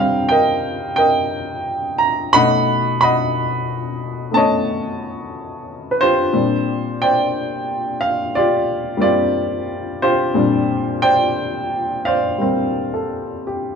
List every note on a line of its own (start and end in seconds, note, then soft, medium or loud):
0.00 2.33 C3 soft
0.00 2.36 G3 soft
0.00 2.35 A#3 soft
0.00 2.35 C4 soft
0.00 2.34 D#4 medium
0.00 0.29 D#5 medium
0.00 2.36 F5 medium
0.00 0.29 G5 medium
0.00 1.98 A#5 medium
0.00 2.35 C6 loud
0.29 0.97 A#4 medium
0.29 0.98 D#5 medium
0.29 0.94 G5 medium
0.96 2.30 A#4 medium
0.96 2.30 D#5 medium
0.96 1.95 G5 medium
1.98 2.06 A#5 medium
2.33 6.34 B2 medium
2.33 4.30 A3 soft
2.33 4.33 C#4 soft
2.33 6.34 D#4 medium
2.33 3.02 D#5 medium
2.33 3.01 F#5 medium
2.33 2.96 B5 loud
3.01 4.36 D#5 medium
3.01 4.97 F#5 medium
3.01 4.38 B5 medium
4.31 6.32 A3 soft
4.31 6.33 B3 soft
4.31 6.34 C#4 soft
4.31 5.87 A5 loud
4.37 6.31 C#5 medium
4.37 6.31 D#5 medium
5.91 6.00 B4 medium
6.01 7.96 F4 medium
6.01 7.96 G4 medium
6.01 7.01 C5 loud
6.33 10.32 A#2 medium
6.33 8.96 G3 soft
6.33 8.99 C4 medium
6.33 10.34 D4 medium
7.02 8.97 C5 medium
7.02 8.34 D5 medium
7.02 7.96 G5 medium
8.01 8.34 F5 medium
8.35 9.02 F4 medium
8.35 9.01 G4 medium
8.35 8.50 D5 medium
8.97 10.33 G3 medium
8.97 10.35 A#3 soft
8.97 10.34 C4 medium
9.01 10.02 F4 medium
9.01 10.02 G4 medium
9.01 10.06 D5 medium
10.02 12.02 F4 medium
10.02 12.02 G4 medium
10.02 10.99 C5 medium
10.34 13.76 A#2 medium
10.34 12.37 G3 medium
10.34 12.40 C4 soft
10.34 13.76 D4 medium
11.02 12.06 C5 medium
11.02 12.05 D5 medium
11.02 12.01 G5 loud
12.05 13.76 C5 medium
12.05 13.76 D5 medium
12.05 13.76 F5 medium
12.38 13.76 G3 soft
12.38 13.76 A#3 soft
12.38 13.76 C4 medium
12.94 13.71 A4 soft
13.47 13.76 G4 soft